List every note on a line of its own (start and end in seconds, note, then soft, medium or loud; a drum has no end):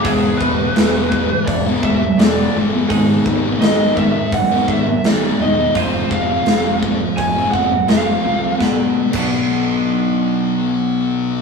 0.04 0.33 E1 medium
0.04 0.38 E2 medium
0.04 0.38 B2 loud
0.04 0.40 E3 medium
0.04 0.38 E3 loud
0.04 0.41 G#3 medium
0.04 0.42 B3 medium
0.04 0.42 E4 medium
0.04 0.37 G#4 medium
0.04 kick loud
0.04 open hi-hat soft
0.38 0.69 E1 medium
0.38 0.72 E2 medium
0.38 0.72 B2 medium
0.38 0.75 E3 medium
0.38 0.60 G#3 medium
0.38 1.49 B4 medium
0.38 kick medium
0.42 0.59 B3 medium
0.42 0.58 E4 medium
0.59 0.77 G#3 medium
0.59 0.77 B3 medium
0.59 0.77 E4 medium
0.75 1.33 E1 medium
0.75 1.07 E2 medium
0.75 1.07 B2 medium
0.75 1.10 E3 medium
0.75 1.12 G#3 medium
0.75 1.12 B3 medium
0.75 1.12 E4 medium
0.75 snare loud
0.75 open hi-hat soft
1.10 1.43 E2 medium
1.10 1.43 B2 medium
1.10 1.65 E3 medium
1.10 1.30 G#3 medium
1.10 1.30 B3 medium
1.10 1.29 E4 medium
1.10 kick medium
1.30 muted distorted electric guitar stroke soft
1.46 1.76 E1 medium
1.46 1.79 E2 medium
1.46 1.79 B2 medium
1.46 1.56 D5 medium
1.46 kick loud
1.46 open hi-hat soft
1.66 2.03 G#3 soft
1.66 2.01 B3 medium
1.66 2.01 E4 medium
1.83 2.11 E1 medium
1.83 2.14 E2 medium
1.83 2.15 B2 medium
1.83 2.19 E5 medium
1.83 kick medium
2.03 muted distorted electric guitar stroke soft
2.18 2.47 E1 medium
2.18 2.50 E2 medium
2.18 2.50 B2 medium
2.18 2.54 E3 medium
2.18 2.56 G#3 medium
2.18 2.55 B3 medium
2.18 2.56 E4 medium
2.18 2.52 D5 medium
2.18 snare loud
2.18 open hi-hat soft
2.53 2.83 G1 medium
2.53 2.85 E2 medium
2.53 2.86 B2 medium
2.53 2.88 E3 medium
2.53 2.74 G#3 medium
2.53 2.72 B3 medium
2.57 2.71 E4 medium
2.72 2.91 G#3 soft
2.72 2.88 B3 medium
2.72 2.87 E4 medium
2.88 3.18 G#1 medium
2.88 3.22 G#2 loud
2.88 3.60 G#2 medium
2.88 3.23 D#3 loud
2.88 3.25 D#3 medium
2.88 3.23 G#3 medium
2.88 3.27 G#3 medium
2.88 3.27 B3 loud
2.88 kick medium
2.88 open hi-hat soft
2.93 3.27 D#4 medium
3.24 3.54 G#1 medium
3.24 3.57 G#2 medium
3.24 3.57 D#3 medium
3.24 3.61 D#3 medium
3.24 3.45 G#3 medium
3.24 3.44 B3 medium
3.24 3.43 D#4 medium
3.24 kick medium
3.44 3.63 G#3 medium
3.44 3.63 B3 medium
3.44 3.63 D#4 medium
3.61 4.18 G#1 medium
3.61 3.93 G#2 medium
3.61 4.32 G#2 medium
3.61 3.93 D#3 medium
3.61 3.96 D#3 medium
3.61 3.97 G#3 loud
3.61 3.97 B3 medium
3.61 3.98 D#4 loud
3.61 3.94 D#5 medium
3.61 snare loud
3.61 open hi-hat soft
3.97 4.29 G#2 medium
3.97 4.15 D#3 medium
3.97 4.29 D#3 medium
3.97 4.15 G#3 medium
3.97 4.15 B3 medium
3.97 4.15 D#4 medium
3.97 4.33 E5 medium
3.97 kick medium
4.16 muted distorted electric guitar stroke soft
4.32 4.61 G#1 medium
4.32 4.65 G#2 medium
4.32 4.65 D#3 medium
4.32 4.69 F#5 loud
4.32 kick medium
4.32 open hi-hat soft
4.51 4.85 G#3 medium
4.51 4.85 B3 medium
4.51 4.85 D#4 medium
4.68 4.96 G#1 medium
4.68 5.00 G#2 medium
4.68 5.01 D#3 medium
4.68 5.04 E5 medium
4.68 kick medium
4.86 muted distorted electric guitar stroke medium
5.04 5.32 G#1 medium
5.04 5.36 G#2 medium
5.04 5.73 G#2 medium
5.04 5.36 D#3 medium
5.04 5.38 D#3 medium
5.04 5.39 G#3 medium
5.04 5.40 B3 medium
5.04 5.40 D#4 medium
5.04 5.41 D5 medium
5.04 snare medium
5.04 open hi-hat soft
5.38 5.67 E1 medium
5.38 5.72 G#2 medium
5.38 5.73 D#3 medium
5.38 5.72 D#3 medium
5.38 5.59 G#3 medium
5.38 5.58 B3 medium
5.38 5.57 D#4 medium
5.38 5.77 D#5 medium
5.58 5.74 G#3 soft
5.58 5.74 B3 medium
5.58 5.73 D#4 medium
5.75 6.03 F1 medium
5.75 6.09 F3 medium
5.75 6.11 G#3 medium
5.75 6.09 C4 medium
5.75 6.11 C4 medium
5.75 6.09 F4 loud
5.75 6.12 F4 medium
5.75 6.13 C5 medium
5.75 kick loud
5.75 open hi-hat soft
6.11 6.39 F1 medium
6.11 6.47 F3 medium
6.11 6.43 F3 medium
6.11 6.29 G#3 medium
6.11 6.43 C4 medium
6.11 6.29 C4 medium
6.11 6.27 F4 medium
6.11 6.79 F5 medium
6.11 kick medium
6.29 6.47 G#3 soft
6.29 6.47 C4 medium
6.29 6.48 F4 medium
6.45 7.03 F1 medium
6.45 6.79 F3 medium
6.45 6.81 F3 medium
6.45 6.82 G#3 medium
6.45 6.79 C4 medium
6.45 6.82 C4 medium
6.45 snare loud
6.45 open hi-hat soft
6.49 6.83 F4 medium
6.82 7.36 F3 medium
6.82 7.14 F3 medium
6.82 7.00 G#3 medium
6.82 7.14 C4 medium
6.82 7.00 C4 medium
6.82 7.00 F4 medium
6.82 kick medium
7.01 muted distorted electric guitar stroke soft
7.17 7.47 F1 medium
7.17 7.50 F3 medium
7.17 7.50 C4 medium
7.17 7.51 G#5 medium
7.17 kick medium
7.17 open hi-hat soft
7.35 7.70 G#3 soft
7.35 7.70 C4 soft
7.35 7.70 F4 medium
7.51 7.82 F1 medium
7.51 7.86 F3 medium
7.51 7.86 C4 medium
7.51 7.85 F#5 medium
7.51 kick medium
7.71 muted distorted electric guitar stroke soft
7.87 8.17 F1 medium
7.87 8.23 F3 medium
7.87 8.21 F3 medium
7.87 8.23 G#3 medium
7.87 8.24 C4 medium
7.87 8.21 C4 medium
7.87 8.24 F4 medium
7.87 8.57 F5 medium
7.87 snare medium
7.87 open hi-hat soft
8.24 8.53 C2 medium
8.24 8.57 F3 medium
8.24 8.42 G#3 medium
8.24 8.57 C4 medium
8.24 8.41 C4 medium
8.24 8.41 F4 medium
8.42 8.59 G#3 soft
8.42 8.58 C4 medium
8.42 8.58 F4 soft
8.58 8.81 B1 medium
8.58 9.11 B2 medium
8.58 9.12 B2 medium
8.58 9.14 F#3 medium
8.58 9.14 B3 medium
8.58 9.15 D4 medium
8.58 kick medium
8.58 snare medium
8.62 9.15 B3 medium
8.62 9.16 F#4 medium
9.11 11.42 B1 medium
9.11 11.42 B2 medium
9.11 11.42 F#3 medium
9.11 11.42 B3 medium
9.11 kick medium
9.11 crash medium
9.15 11.42 B3 medium
9.15 11.42 D4 medium
9.15 11.42 F#4 medium